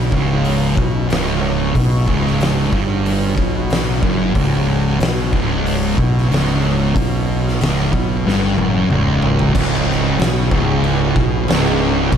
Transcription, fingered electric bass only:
0.12 0.74 C#1 loud
0.77 1.08 B1 medium
1.10 1.72 C#1 medium
1.75 2.06 B1 medium
2.08 2.69 C#1 loud
2.72 3.34 G1 loud
3.37 3.99 B1 loud
4.02 4.33 F#1 loud
4.35 4.97 C#1 medium
5.00 5.31 B1 medium
5.33 5.94 C#1 loud
5.97 6.28 B1 loud
6.31 6.92 C#1 loud
6.96 7.57 B1 loud
7.60 7.90 C#1 medium
7.92 8.23 B1 loud
8.26 8.56 G1 medium
8.58 8.88 F#1 loud
8.88 9.50 C#1 medium
9.54 10.15 C#1 loud
10.19 10.49 B1 loud
10.51 11.12 C#1 loud
11.16 11.46 B1 loud
11.48 12.09 C#1 loud
12.12 12.17 B1 medium

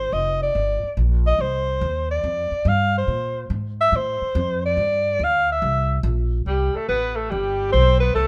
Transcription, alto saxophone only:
0.00 0.15 C5 medium
0.13 0.41 D#5 loud
0.42 0.94 D5 medium
1.27 1.43 D#5 loud
1.41 2.10 C5 medium
2.11 2.70 D5 medium
2.68 2.96 F5 loud
2.98 3.49 C5 medium
3.81 3.97 E5 loud
3.96 4.65 C5 medium
4.66 5.25 D5 loud
5.24 5.50 F5 loud
5.52 6.02 E5 medium
6.49 6.76 G4 medium
6.75 6.88 A4 medium
6.88 7.18 B4 medium
7.16 7.32 A4 medium
7.30 7.72 G4 medium
7.72 7.99 C5 loud
8.00 8.14 B4 medium
8.15 8.27 A4 loud

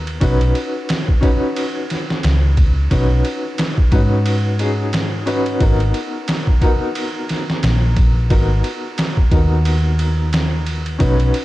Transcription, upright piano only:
0.00 0.17 B3 medium
0.00 0.18 D#4 medium
0.00 0.18 F#4 medium
0.00 0.19 A#4 medium
0.20 1.19 C#4 medium
0.20 1.19 D#4 medium
0.20 1.20 F#4 medium
0.20 1.20 B4 medium
1.21 2.87 C#4 medium
1.21 2.87 D#4 medium
1.21 2.88 F#4 medium
1.21 2.88 B4 medium
2.90 3.13 C#4 medium
2.90 3.13 D#4 medium
2.90 3.13 F#4 medium
2.90 3.14 B4 medium
3.91 4.56 C#4 medium
3.91 4.57 D#4 medium
3.91 4.57 F#4 medium
3.91 4.57 B4 medium
4.59 5.23 C#4 medium
4.59 5.23 D#4 medium
4.59 5.24 F#4 medium
4.59 5.24 G#4 medium
5.26 5.57 C#4 medium
5.26 5.57 D#4 medium
5.26 5.57 F#4 medium
5.26 5.57 B4 loud
5.59 6.58 B3 medium
5.59 6.58 D#4 medium
5.59 6.59 F#4 medium
5.59 6.59 A#4 medium
6.61 8.26 B3 medium
6.61 8.27 D#4 medium
6.61 8.27 F#4 medium
6.61 8.28 A#4 loud
8.30 8.52 B3 medium
8.30 8.52 D#4 medium
8.30 8.53 F#4 medium
8.30 8.53 A#4 medium
9.30 10.96 B3 medium
9.30 10.97 D#4 medium
9.30 10.97 F#4 medium
9.30 10.97 A#4 medium
10.99 11.45 C#4 medium
10.99 11.45 D#4 medium
10.99 11.45 F#4 medium
10.99 11.45 B4 medium

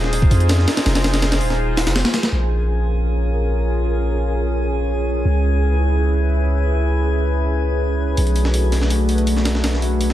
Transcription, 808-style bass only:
0.00 0.30 D#1 medium
0.31 0.66 F2 medium
0.86 1.42 F1 loud
1.41 1.88 D#1 medium
1.87 2.03 F1 loud
2.32 5.23 A#1 medium
5.25 8.16 C#2 medium
8.18 10.13 B1 medium

